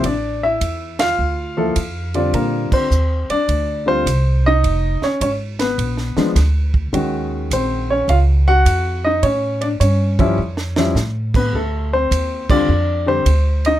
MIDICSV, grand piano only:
0, 0, Header, 1, 2, 480
1, 0, Start_track
1, 0, Tempo, 574713
1, 35, Time_signature, 4, 2, 24, 8
1, 11523, End_track
2, 0, Start_track
2, 0, Title_t, "Grand piano"
2, 0, Program_c, 0, 0
2, 46, Note_on_c, 0, 74, 81
2, 57, Note_on_c, 0, 62, 65
2, 338, Note_off_c, 0, 74, 0
2, 344, Note_off_c, 0, 62, 0
2, 362, Note_on_c, 0, 76, 91
2, 371, Note_on_c, 0, 64, 70
2, 805, Note_off_c, 0, 76, 0
2, 810, Note_off_c, 0, 64, 0
2, 834, Note_on_c, 0, 77, 100
2, 847, Note_on_c, 0, 65, 62
2, 1311, Note_on_c, 0, 53, 57
2, 1311, Note_on_c, 0, 58, 52
2, 1316, Note_on_c, 0, 69, 73
2, 1318, Note_on_c, 0, 64, 53
2, 1456, Note_off_c, 0, 58, 0
2, 1457, Note_off_c, 0, 53, 0
2, 1459, Note_off_c, 0, 69, 0
2, 1460, Note_off_c, 0, 64, 0
2, 1760, Note_off_c, 0, 77, 0
2, 1767, Note_off_c, 0, 65, 0
2, 1792, Note_on_c, 0, 50, 53
2, 1794, Note_on_c, 0, 55, 45
2, 1798, Note_on_c, 0, 60, 50
2, 1798, Note_on_c, 0, 65, 59
2, 1799, Note_on_c, 0, 74, 65
2, 1815, Note_on_c, 0, 62, 55
2, 1954, Note_off_c, 0, 62, 0
2, 1958, Note_on_c, 0, 70, 66
2, 1961, Note_off_c, 0, 74, 0
2, 1971, Note_on_c, 0, 58, 56
2, 2260, Note_off_c, 0, 58, 0
2, 2284, Note_on_c, 0, 72, 80
2, 2285, Note_off_c, 0, 70, 0
2, 2286, Note_off_c, 0, 60, 0
2, 2299, Note_on_c, 0, 60, 56
2, 2400, Note_off_c, 0, 50, 0
2, 2402, Note_off_c, 0, 55, 0
2, 2404, Note_off_c, 0, 65, 0
2, 2725, Note_off_c, 0, 72, 0
2, 2733, Note_off_c, 0, 60, 0
2, 2758, Note_on_c, 0, 74, 95
2, 2770, Note_on_c, 0, 62, 66
2, 3208, Note_off_c, 0, 62, 0
2, 3224, Note_on_c, 0, 50, 60
2, 3230, Note_on_c, 0, 55, 50
2, 3231, Note_on_c, 0, 60, 55
2, 3235, Note_on_c, 0, 65, 66
2, 3239, Note_on_c, 0, 72, 102
2, 3249, Note_off_c, 0, 74, 0
2, 3372, Note_off_c, 0, 50, 0
2, 3375, Note_off_c, 0, 55, 0
2, 3376, Note_off_c, 0, 60, 0
2, 3378, Note_off_c, 0, 65, 0
2, 3728, Note_on_c, 0, 75, 103
2, 3730, Note_off_c, 0, 72, 0
2, 3737, Note_on_c, 0, 63, 80
2, 4172, Note_off_c, 0, 63, 0
2, 4207, Note_on_c, 0, 73, 86
2, 4214, Note_off_c, 0, 75, 0
2, 4216, Note_on_c, 0, 61, 63
2, 4346, Note_off_c, 0, 73, 0
2, 4353, Note_off_c, 0, 61, 0
2, 4359, Note_on_c, 0, 73, 74
2, 4365, Note_on_c, 0, 61, 61
2, 4430, Note_off_c, 0, 73, 0
2, 4435, Note_off_c, 0, 61, 0
2, 4678, Note_on_c, 0, 71, 73
2, 4694, Note_on_c, 0, 59, 56
2, 5146, Note_off_c, 0, 59, 0
2, 5152, Note_on_c, 0, 53, 62
2, 5159, Note_on_c, 0, 56, 64
2, 5159, Note_on_c, 0, 59, 59
2, 5163, Note_on_c, 0, 62, 63
2, 5296, Note_off_c, 0, 53, 0
2, 5299, Note_off_c, 0, 56, 0
2, 5299, Note_off_c, 0, 59, 0
2, 5302, Note_off_c, 0, 62, 0
2, 5601, Note_off_c, 0, 71, 0
2, 5786, Note_on_c, 0, 51, 56
2, 5787, Note_on_c, 0, 56, 48
2, 5792, Note_on_c, 0, 61, 55
2, 5796, Note_on_c, 0, 66, 65
2, 6290, Note_on_c, 0, 72, 72
2, 6299, Note_on_c, 0, 60, 62
2, 6584, Note_off_c, 0, 60, 0
2, 6602, Note_on_c, 0, 73, 81
2, 6603, Note_off_c, 0, 61, 0
2, 6610, Note_off_c, 0, 72, 0
2, 6615, Note_on_c, 0, 61, 66
2, 6754, Note_off_c, 0, 61, 0
2, 6760, Note_on_c, 0, 77, 86
2, 6762, Note_off_c, 0, 73, 0
2, 6767, Note_on_c, 0, 65, 67
2, 6832, Note_off_c, 0, 77, 0
2, 6837, Note_off_c, 0, 65, 0
2, 7078, Note_off_c, 0, 66, 0
2, 7080, Note_on_c, 0, 78, 111
2, 7090, Note_on_c, 0, 66, 78
2, 7134, Note_off_c, 0, 51, 0
2, 7134, Note_off_c, 0, 56, 0
2, 7529, Note_off_c, 0, 66, 0
2, 7554, Note_on_c, 0, 75, 84
2, 7571, Note_off_c, 0, 78, 0
2, 7571, Note_on_c, 0, 63, 71
2, 7703, Note_off_c, 0, 75, 0
2, 7708, Note_on_c, 0, 73, 87
2, 7712, Note_off_c, 0, 63, 0
2, 7728, Note_on_c, 0, 61, 62
2, 8019, Note_off_c, 0, 61, 0
2, 8027, Note_on_c, 0, 74, 79
2, 8041, Note_off_c, 0, 73, 0
2, 8046, Note_on_c, 0, 62, 63
2, 8069, Note_off_c, 0, 74, 0
2, 8087, Note_off_c, 0, 62, 0
2, 8186, Note_on_c, 0, 73, 69
2, 8200, Note_on_c, 0, 61, 56
2, 8503, Note_off_c, 0, 61, 0
2, 8510, Note_on_c, 0, 53, 68
2, 8514, Note_on_c, 0, 55, 67
2, 8515, Note_on_c, 0, 61, 69
2, 8520, Note_on_c, 0, 64, 78
2, 8656, Note_off_c, 0, 53, 0
2, 8659, Note_off_c, 0, 55, 0
2, 8659, Note_off_c, 0, 61, 0
2, 8661, Note_off_c, 0, 64, 0
2, 8997, Note_on_c, 0, 53, 64
2, 9004, Note_on_c, 0, 55, 59
2, 9005, Note_on_c, 0, 61, 62
2, 9006, Note_on_c, 0, 64, 70
2, 9118, Note_off_c, 0, 73, 0
2, 9140, Note_off_c, 0, 53, 0
2, 9144, Note_off_c, 0, 55, 0
2, 9144, Note_off_c, 0, 61, 0
2, 9145, Note_off_c, 0, 64, 0
2, 9488, Note_on_c, 0, 71, 74
2, 9498, Note_on_c, 0, 59, 50
2, 9637, Note_off_c, 0, 59, 0
2, 9647, Note_off_c, 0, 71, 0
2, 9648, Note_on_c, 0, 69, 73
2, 9658, Note_on_c, 0, 57, 55
2, 9946, Note_off_c, 0, 57, 0
2, 9967, Note_on_c, 0, 72, 93
2, 9972, Note_off_c, 0, 69, 0
2, 9974, Note_on_c, 0, 60, 60
2, 10413, Note_off_c, 0, 60, 0
2, 10438, Note_on_c, 0, 50, 67
2, 10440, Note_on_c, 0, 55, 58
2, 10443, Note_on_c, 0, 74, 107
2, 10445, Note_on_c, 0, 60, 64
2, 10448, Note_on_c, 0, 65, 66
2, 10453, Note_on_c, 0, 62, 76
2, 10457, Note_off_c, 0, 72, 0
2, 10582, Note_off_c, 0, 50, 0
2, 10583, Note_off_c, 0, 55, 0
2, 10586, Note_off_c, 0, 60, 0
2, 10587, Note_off_c, 0, 65, 0
2, 10893, Note_off_c, 0, 62, 0
2, 10911, Note_on_c, 0, 50, 60
2, 10917, Note_on_c, 0, 55, 57
2, 10917, Note_on_c, 0, 67, 69
2, 10918, Note_on_c, 0, 60, 54
2, 10926, Note_on_c, 0, 72, 96
2, 10935, Note_off_c, 0, 74, 0
2, 11059, Note_off_c, 0, 50, 0
2, 11062, Note_off_c, 0, 55, 0
2, 11062, Note_off_c, 0, 67, 0
2, 11063, Note_off_c, 0, 60, 0
2, 11409, Note_on_c, 0, 75, 94
2, 11417, Note_off_c, 0, 72, 0
2, 11420, Note_on_c, 0, 63, 73
2, 11523, Note_off_c, 0, 63, 0
2, 11523, Note_off_c, 0, 75, 0
2, 11523, End_track
0, 0, End_of_file